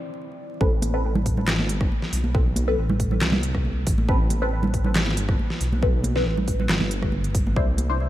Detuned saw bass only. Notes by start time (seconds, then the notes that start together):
0.61 A1
1.52 G#1
1.77 G1
2.13 B1
2.78 A1
3.21 C2
3.87 A1
4.09 A1
5.00 G#1
5.25 G1
5.61 B1
6.26 A1
6.69 G1
7.56 C2